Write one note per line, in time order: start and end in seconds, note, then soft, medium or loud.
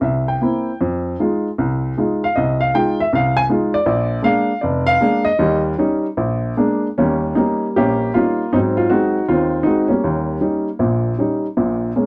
0.01 0.36 C2 medium
0.01 0.28 E5 medium
0.28 0.78 G5 medium
0.42 0.69 A#3 soft
0.42 0.69 C4 soft
0.42 0.69 E4 medium
0.81 1.14 F2 medium
1.20 1.47 G#3 medium
1.20 1.47 D#4 soft
1.20 1.47 F4 medium
1.58 1.92 C2 medium
1.98 2.24 G#3 soft
1.98 2.24 D#4 soft
1.98 2.25 F4 medium
2.24 2.36 F5 medium
2.36 2.70 C2 medium
2.36 2.60 D#5 medium
2.61 2.73 F5 medium
2.74 3.00 G#3 medium
2.74 3.01 D#4 soft
2.74 3.01 F4 medium
2.74 2.99 G5 loud
3.00 3.12 E5 medium
3.13 3.45 C2 medium
3.13 3.38 F5 medium
3.37 3.44 G#5 loud
3.49 3.75 G#3 medium
3.49 3.75 D#4 soft
3.49 3.76 F4 medium
3.74 4.20 D5 medium
3.86 4.18 A#1 medium
4.22 4.49 G#3 medium
4.22 4.50 A#3 medium
4.22 4.50 D4 medium
4.22 4.59 F5 medium
4.61 4.96 F1 medium
4.61 4.86 D5 medium
4.87 5.22 F5 loud
5.01 5.27 G#3 medium
5.01 5.27 A#3 medium
5.01 5.28 D4 medium
5.25 5.61 D#5 loud
5.39 5.73 D#2 medium
5.39 5.73 G3 medium
5.78 6.05 G3 medium
5.78 6.05 C#4 medium
5.78 6.06 D#4 medium
6.17 6.52 A#1 medium
6.57 6.86 G#3 medium
6.57 6.86 A#3 medium
6.57 6.86 D4 medium
6.98 7.33 D#2 medium
6.98 7.36 G3 medium
6.98 7.35 A#3 medium
6.98 7.37 C#4 medium
7.35 8.11 G3 medium
7.35 7.76 A#3 medium
7.35 7.66 C#4 soft
7.35 7.37 D#4 medium
7.35 7.66 D#4 medium
7.76 8.10 A#1 medium
7.76 8.14 A#3 medium
7.76 8.15 C#4 medium
7.76 8.16 G4 medium
8.14 8.42 G3 soft
8.14 8.50 A#3 medium
8.14 8.42 C#4 soft
8.14 8.42 D#4 soft
8.14 8.50 F4 medium
8.53 8.86 G#2 medium
8.53 9.25 F#3 medium
8.53 8.90 C4 medium
8.53 8.58 D#4 medium
8.77 8.91 F4 medium
8.90 9.17 G#3 soft
8.90 9.17 C4 soft
8.90 9.62 D#4 medium
8.90 9.25 F#4 medium
9.28 9.61 D#2 medium
9.28 9.64 C4 medium
9.28 9.67 F4 medium
9.63 9.91 G#3 soft
9.63 9.91 C4 soft
9.63 9.87 D#4 medium
9.63 9.92 F#4 medium
9.88 10.39 G3 soft
9.88 11.39 A#3 soft
9.88 10.40 C#4 medium
10.04 10.36 D#2 medium
10.41 10.67 G3 medium
10.41 10.68 C#4 soft
10.41 10.68 D#4 medium
10.79 11.13 A#1 medium
10.79 11.13 A#2 medium
11.19 11.45 G3 soft
11.19 11.45 C#4 soft
11.19 11.46 D#4 medium
11.57 11.90 A#1 medium
11.57 11.90 A#2 medium
11.96 12.06 G#3 soft
11.96 12.06 A#3 soft
11.96 12.06 C#4 medium